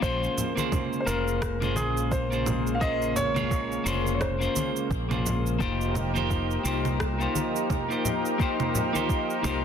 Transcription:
0.00 fretless electric bass A#1, analog synth pad C#3 G#3 A#3, clean electric guitar A#3 C#4 F4 G#4 C5, grand piano C5, kick, shaker
0.23 shaker
0.38 low conga, shaker
0.55 clean electric guitar A#3 C#4 F4 G#4 C5, high conga, shaker
0.72 kick, low conga, shaker
0.93 shaker
1.00 grand piano C5
1.05 fretless electric bass F1, clean electric guitar A#3 C#4 F4 G#4 C5, grand piano A#4, shaker
1.28 shaker
1.42 kick, cross-stick, shaker
1.60 clean electric guitar A#3 C#4 F4 G#4 C5, low conga, shaker
1.76 fretless electric bass A#1, grand piano G#4, high conga, shaker
1.97 shaker
2.11 grand piano C5, kick, shaker
2.30 clean electric guitar A#3 C#4 F4 G#4 C5, shaker
2.46 low conga, shaker
2.67 shaker
2.75 grand piano F5
2.80 clean electric guitar A#3 C#4 F4 G#4 C5, grand piano D#5, kick, shaker
3.02 shaker
3.16 grand piano C#5, low conga, shaker
3.34 clean electric guitar A#3 C#4 F4 G#4 C#5, high conga, low conga, shaker
3.51 kick, shaker
3.72 shaker
3.84 fretless electric bass F1, clean electric guitar A#3 C#4 F4 G#4 C5, shaker
4.07 shaker
4.14 grand piano C#5
4.21 grand piano C5, kick, cross-stick, low conga, shaker
4.39 clean electric guitar A#3 C#4 F4 G#4 C5, shaker
4.56 high conga, shaker
4.76 shaker
4.91 fretless electric bass A#1, kick, shaker
5.09 clean electric guitar A#3 C#4 F4 G#4 C5, low conga, shaker
5.26 low conga, shaker
5.46 shaker
5.59 fretless electric bass F1, analog synth pad F3 D#4 G4 A#4, clean electric guitar A#3 D#4 F4 G4 C5, kick, shaker
5.81 shaker
5.95 low conga, shaker
6.14 clean electric guitar A#3 D#4 F4 G4 C5, high conga, shaker
6.30 kick, shaker
6.51 shaker
6.63 fretless electric bass C2, clean electric guitar A#3 D#4 F4 G4 C5, shaker
6.85 low conga, shaker
7.00 kick, cross-stick, shaker
7.19 clean electric guitar A#3 D#4 F4 G4 C5, shaker
7.35 high conga, shaker
7.56 shaker
7.70 kick, low conga, shaker
7.89 clean electric guitar A#3 D#4 F4 G4 C5, shaker
8.05 low conga, shaker
8.25 shaker
8.38 clean electric guitar A#3 D#4 F4 G4 C5, kick, shaker
8.60 low conga, shaker
8.75 low conga, shaker
8.93 clean electric guitar A#3 D#4 F4 G4 C5, high conga, shaker
9.09 kick, shaker
9.30 shaker
9.43 fretless electric bass C2, clean electric guitar A#3 D#4 F4 G4 C5, low conga, shaker

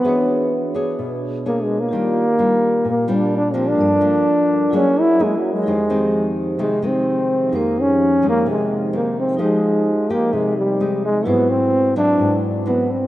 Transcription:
Already playing: trombone B3
0.02 nylon-string guitar E3 D4 G#4 C#5, vibraphone D4 F#4 G#4
0.08 vibraphone B4 C#5
0.74 nylon-string guitar D4 G#4 C#5
0.99 nylon-string guitar B2
1.46 trombone A#3, nylon-string guitar D4 G#4 C#5
1.64 trombone G#3
1.80 trombone A#3
1.89 nylon-string guitar D#3 G3 D4, vibraphone F4 G4
1.93 nylon-string guitar F4, vibraphone A#4 D5
2.39 nylon-string guitar G3 D4 F4
2.85 nylon-string guitar A#2
2.90 trombone A#3
3.08 nylon-string guitar G3 D4 F4
3.14 trombone D4
3.37 trombone D4
3.54 nylon-string guitar F3 A#3 D4, trombone C4, vibraphone F4 G4 A#4 D5
3.69 trombone D4
3.74 nylon-string guitar G2, vibraphone G3 F4 A4
3.79 vibraphone A#4 D5
4.01 nylon-string guitar F3 A#3 D4
4.69 vibraphone F#3 E4 G#4 A#4, nylon-string guitar F#3 A#3 E4
4.74 nylon-string guitar G#4, vibraphone C#5
4.78 trombone C#4
5.01 trombone E4
5.19 nylon-string guitar A#3 E4 G#4
5.24 trombone G#3
5.38 trombone F#3
5.54 trombone G#3
5.62 vibraphone F3 D#4 G4
5.66 nylon-string guitar F2 D#3 G#3 C4, vibraphone G#4 C5
5.89 nylon-string guitar D#3 G#3 C4
6.58 nylon-string guitar C3 D#3 G#3 C4, trombone G#3
6.82 nylon-string guitar D#3 G#3 C4
6.87 trombone C4
7.49 nylon-string guitar F2 D#3 G#3, vibraphone F3 D#4 G4
7.54 trombone A#3, vibraphone G#4 C5
7.81 trombone C#4
8.22 nylon-string guitar D#3 G#3 C4
8.29 trombone A#3
8.46 nylon-string guitar C3
8.51 trombone G#3
8.93 nylon-string guitar D#3 G#3 C4, trombone A#3
9.19 trombone C4
9.36 vibraphone F3 D#4 G4, nylon-string guitar F3 G#3 G4
9.40 trombone G#3, nylon-string guitar D#4, vibraphone C5
10.10 nylon-string guitar G#3 D#4 G4, trombone A#3
10.33 nylon-string guitar C3, trombone G#3
10.58 trombone G3
10.80 nylon-string guitar G#3 D#4 G4
11.05 trombone G#3
11.22 nylon-string guitar G#2 F#3, vibraphone G#3 E4 F#4, trombone B3
11.27 nylon-string guitar C4 E4, vibraphone B4 C5
11.50 trombone C4
11.96 nylon-string guitar F#3 C4 E4, trombone D4
12.19 nylon-string guitar G#2
12.66 nylon-string guitar F#3 C4 E4, trombone B3
12.91 trombone C4

